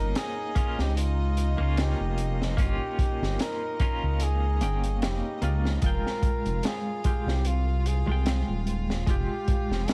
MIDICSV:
0, 0, Header, 1, 6, 480
1, 0, Start_track
1, 0, Tempo, 810811
1, 1531, Time_signature, 4, 2, 24, 8
1, 5881, End_track
2, 0, Start_track
2, 0, Title_t, "Violin section"
2, 0, Program_c, 0, 48
2, 0, Note_on_c, 0, 63, 83
2, 0, Note_on_c, 0, 75, 82
2, 3454, Note_on_c, 0, 65, 81
2, 3457, Note_on_c, 0, 77, 80
2, 3461, Note_off_c, 0, 63, 0
2, 3461, Note_off_c, 0, 75, 0
2, 5881, Note_off_c, 0, 65, 0
2, 5881, Note_off_c, 0, 77, 0
2, 5881, End_track
3, 0, Start_track
3, 0, Title_t, "Muted trumpet"
3, 0, Program_c, 1, 59
3, 0, Note_on_c, 1, 70, 123
3, 101, Note_on_c, 1, 68, 105
3, 110, Note_off_c, 1, 70, 0
3, 475, Note_on_c, 1, 67, 96
3, 484, Note_off_c, 1, 68, 0
3, 577, Note_off_c, 1, 67, 0
3, 579, Note_on_c, 1, 65, 102
3, 1063, Note_on_c, 1, 67, 98
3, 1072, Note_off_c, 1, 65, 0
3, 1430, Note_off_c, 1, 67, 0
3, 1541, Note_on_c, 1, 67, 105
3, 1992, Note_off_c, 1, 67, 0
3, 2019, Note_on_c, 1, 70, 108
3, 2504, Note_on_c, 1, 68, 106
3, 2513, Note_off_c, 1, 70, 0
3, 2976, Note_off_c, 1, 68, 0
3, 2979, Note_on_c, 1, 67, 86
3, 3325, Note_off_c, 1, 67, 0
3, 3459, Note_on_c, 1, 70, 111
3, 3941, Note_on_c, 1, 68, 100
3, 3950, Note_off_c, 1, 70, 0
3, 4313, Note_on_c, 1, 67, 86
3, 4322, Note_off_c, 1, 68, 0
3, 4422, Note_on_c, 1, 65, 96
3, 4431, Note_off_c, 1, 67, 0
3, 4661, Note_on_c, 1, 68, 89
3, 4670, Note_off_c, 1, 65, 0
3, 5136, Note_off_c, 1, 68, 0
3, 5374, Note_on_c, 1, 67, 98
3, 5857, Note_on_c, 1, 70, 101
3, 5866, Note_off_c, 1, 67, 0
3, 5881, Note_off_c, 1, 70, 0
3, 5881, End_track
4, 0, Start_track
4, 0, Title_t, "Clean electric guitar"
4, 0, Program_c, 2, 27
4, 0, Note_on_c, 2, 58, 90
4, 0, Note_on_c, 2, 61, 77
4, 0, Note_on_c, 2, 65, 94
4, 301, Note_off_c, 2, 58, 0
4, 307, Note_off_c, 2, 61, 0
4, 314, Note_off_c, 2, 65, 0
4, 327, Note_on_c, 2, 58, 84
4, 334, Note_on_c, 2, 61, 75
4, 341, Note_on_c, 2, 65, 93
4, 494, Note_off_c, 2, 58, 0
4, 497, Note_off_c, 2, 61, 0
4, 501, Note_off_c, 2, 65, 0
4, 935, Note_on_c, 2, 58, 76
4, 949, Note_on_c, 2, 61, 71
4, 962, Note_on_c, 2, 65, 85
4, 1501, Note_off_c, 2, 58, 0
4, 1508, Note_off_c, 2, 61, 0
4, 1514, Note_off_c, 2, 65, 0
4, 1521, Note_on_c, 2, 58, 94
4, 1534, Note_on_c, 2, 61, 88
4, 1547, Note_on_c, 2, 65, 107
4, 2220, Note_off_c, 2, 58, 0
4, 2227, Note_off_c, 2, 61, 0
4, 2233, Note_off_c, 2, 65, 0
4, 2249, Note_on_c, 2, 58, 104
4, 2256, Note_on_c, 2, 61, 99
4, 2262, Note_on_c, 2, 65, 109
4, 2709, Note_off_c, 2, 58, 0
4, 2712, Note_off_c, 2, 61, 0
4, 2715, Note_off_c, 2, 65, 0
4, 2730, Note_on_c, 2, 58, 82
4, 2736, Note_on_c, 2, 61, 74
4, 2741, Note_on_c, 2, 79, 91
4, 3185, Note_off_c, 2, 58, 0
4, 3188, Note_off_c, 2, 61, 0
4, 3190, Note_off_c, 2, 79, 0
4, 3206, Note_on_c, 2, 58, 104
4, 3213, Note_on_c, 2, 61, 88
4, 3218, Note_on_c, 2, 65, 104
4, 3423, Note_off_c, 2, 58, 0
4, 3426, Note_off_c, 2, 61, 0
4, 3429, Note_off_c, 2, 65, 0
4, 3443, Note_on_c, 2, 56, 92
4, 3457, Note_on_c, 2, 65, 81
4, 3470, Note_on_c, 2, 79, 95
4, 4141, Note_off_c, 2, 56, 0
4, 4148, Note_off_c, 2, 65, 0
4, 4155, Note_off_c, 2, 79, 0
4, 4172, Note_on_c, 2, 56, 80
4, 4176, Note_on_c, 2, 65, 76
4, 4183, Note_on_c, 2, 67, 91
4, 4336, Note_off_c, 2, 56, 0
4, 4338, Note_off_c, 2, 65, 0
4, 4342, Note_off_c, 2, 67, 0
4, 4779, Note_on_c, 2, 56, 82
4, 4790, Note_on_c, 2, 65, 75
4, 4804, Note_on_c, 2, 79, 88
4, 5343, Note_off_c, 2, 56, 0
4, 5348, Note_off_c, 2, 65, 0
4, 5355, Note_off_c, 2, 79, 0
4, 5366, Note_on_c, 2, 56, 96
4, 5377, Note_on_c, 2, 65, 89
4, 5390, Note_on_c, 2, 67, 105
4, 5881, Note_off_c, 2, 56, 0
4, 5881, Note_off_c, 2, 65, 0
4, 5881, Note_off_c, 2, 67, 0
4, 5881, End_track
5, 0, Start_track
5, 0, Title_t, "Detuned saw bass"
5, 0, Program_c, 3, 39
5, 0, Note_on_c, 3, 31, 106
5, 78, Note_off_c, 3, 31, 0
5, 466, Note_on_c, 3, 37, 97
5, 919, Note_off_c, 3, 37, 0
5, 946, Note_on_c, 3, 37, 98
5, 1153, Note_off_c, 3, 37, 0
5, 1186, Note_on_c, 3, 29, 99
5, 1511, Note_off_c, 3, 29, 0
5, 1527, Note_on_c, 3, 31, 95
5, 1646, Note_off_c, 3, 31, 0
5, 1905, Note_on_c, 3, 31, 102
5, 1998, Note_off_c, 3, 31, 0
5, 2386, Note_on_c, 3, 37, 98
5, 2732, Note_on_c, 3, 31, 86
5, 2741, Note_off_c, 3, 37, 0
5, 2970, Note_on_c, 3, 29, 87
5, 2979, Note_off_c, 3, 31, 0
5, 3087, Note_off_c, 3, 29, 0
5, 3208, Note_on_c, 3, 37, 100
5, 3424, Note_off_c, 3, 37, 0
5, 3449, Note_on_c, 3, 29, 95
5, 3567, Note_off_c, 3, 29, 0
5, 3821, Note_on_c, 3, 29, 103
5, 3917, Note_off_c, 3, 29, 0
5, 4301, Note_on_c, 3, 36, 97
5, 4757, Note_off_c, 3, 36, 0
5, 4783, Note_on_c, 3, 36, 99
5, 4991, Note_off_c, 3, 36, 0
5, 5023, Note_on_c, 3, 27, 96
5, 5350, Note_off_c, 3, 27, 0
5, 5372, Note_on_c, 3, 29, 93
5, 5488, Note_off_c, 3, 29, 0
5, 5743, Note_on_c, 3, 29, 109
5, 5838, Note_off_c, 3, 29, 0
5, 5881, End_track
6, 0, Start_track
6, 0, Title_t, "Drums"
6, 91, Note_on_c, 9, 42, 94
6, 95, Note_on_c, 9, 38, 120
6, 150, Note_off_c, 9, 42, 0
6, 154, Note_off_c, 9, 38, 0
6, 330, Note_on_c, 9, 42, 69
6, 331, Note_on_c, 9, 36, 95
6, 390, Note_off_c, 9, 36, 0
6, 390, Note_off_c, 9, 42, 0
6, 467, Note_on_c, 9, 38, 52
6, 526, Note_off_c, 9, 38, 0
6, 575, Note_on_c, 9, 42, 86
6, 634, Note_off_c, 9, 42, 0
6, 811, Note_on_c, 9, 42, 67
6, 870, Note_off_c, 9, 42, 0
6, 1050, Note_on_c, 9, 42, 94
6, 1055, Note_on_c, 9, 38, 115
6, 1109, Note_off_c, 9, 42, 0
6, 1114, Note_off_c, 9, 38, 0
6, 1289, Note_on_c, 9, 42, 56
6, 1348, Note_off_c, 9, 42, 0
6, 1431, Note_on_c, 9, 38, 53
6, 1490, Note_off_c, 9, 38, 0
6, 1526, Note_on_c, 9, 36, 101
6, 1528, Note_on_c, 9, 42, 91
6, 1585, Note_off_c, 9, 36, 0
6, 1587, Note_off_c, 9, 42, 0
6, 1768, Note_on_c, 9, 36, 99
6, 1769, Note_on_c, 9, 42, 71
6, 1827, Note_off_c, 9, 36, 0
6, 1828, Note_off_c, 9, 42, 0
6, 1913, Note_on_c, 9, 38, 50
6, 1972, Note_off_c, 9, 38, 0
6, 2008, Note_on_c, 9, 42, 91
6, 2016, Note_on_c, 9, 38, 121
6, 2068, Note_off_c, 9, 42, 0
6, 2075, Note_off_c, 9, 38, 0
6, 2247, Note_on_c, 9, 42, 68
6, 2249, Note_on_c, 9, 36, 95
6, 2306, Note_off_c, 9, 42, 0
6, 2308, Note_off_c, 9, 36, 0
6, 2485, Note_on_c, 9, 42, 86
6, 2544, Note_off_c, 9, 42, 0
6, 2729, Note_on_c, 9, 42, 64
6, 2788, Note_off_c, 9, 42, 0
6, 2863, Note_on_c, 9, 42, 43
6, 2922, Note_off_c, 9, 42, 0
6, 2972, Note_on_c, 9, 42, 85
6, 2977, Note_on_c, 9, 38, 127
6, 3032, Note_off_c, 9, 42, 0
6, 3036, Note_off_c, 9, 38, 0
6, 3208, Note_on_c, 9, 42, 61
6, 3267, Note_off_c, 9, 42, 0
6, 3347, Note_on_c, 9, 38, 40
6, 3406, Note_off_c, 9, 38, 0
6, 3444, Note_on_c, 9, 42, 88
6, 3448, Note_on_c, 9, 36, 109
6, 3503, Note_off_c, 9, 42, 0
6, 3508, Note_off_c, 9, 36, 0
6, 3591, Note_on_c, 9, 38, 40
6, 3650, Note_off_c, 9, 38, 0
6, 3686, Note_on_c, 9, 36, 96
6, 3687, Note_on_c, 9, 42, 66
6, 3745, Note_off_c, 9, 36, 0
6, 3746, Note_off_c, 9, 42, 0
6, 3822, Note_on_c, 9, 42, 39
6, 3881, Note_off_c, 9, 42, 0
6, 3925, Note_on_c, 9, 42, 88
6, 3938, Note_on_c, 9, 38, 111
6, 3985, Note_off_c, 9, 42, 0
6, 3997, Note_off_c, 9, 38, 0
6, 4169, Note_on_c, 9, 42, 69
6, 4172, Note_on_c, 9, 36, 93
6, 4228, Note_off_c, 9, 42, 0
6, 4231, Note_off_c, 9, 36, 0
6, 4310, Note_on_c, 9, 38, 49
6, 4370, Note_off_c, 9, 38, 0
6, 4408, Note_on_c, 9, 42, 81
6, 4467, Note_off_c, 9, 42, 0
6, 4653, Note_on_c, 9, 42, 77
6, 4712, Note_off_c, 9, 42, 0
6, 4889, Note_on_c, 9, 42, 91
6, 4894, Note_on_c, 9, 38, 127
6, 4948, Note_off_c, 9, 42, 0
6, 4953, Note_off_c, 9, 38, 0
6, 5131, Note_on_c, 9, 42, 57
6, 5191, Note_off_c, 9, 42, 0
6, 5269, Note_on_c, 9, 38, 50
6, 5328, Note_off_c, 9, 38, 0
6, 5371, Note_on_c, 9, 36, 100
6, 5371, Note_on_c, 9, 42, 86
6, 5430, Note_off_c, 9, 36, 0
6, 5430, Note_off_c, 9, 42, 0
6, 5611, Note_on_c, 9, 42, 71
6, 5612, Note_on_c, 9, 36, 98
6, 5670, Note_off_c, 9, 42, 0
6, 5672, Note_off_c, 9, 36, 0
6, 5752, Note_on_c, 9, 38, 45
6, 5811, Note_off_c, 9, 38, 0
6, 5849, Note_on_c, 9, 42, 83
6, 5857, Note_on_c, 9, 38, 127
6, 5881, Note_off_c, 9, 38, 0
6, 5881, Note_off_c, 9, 42, 0
6, 5881, End_track
0, 0, End_of_file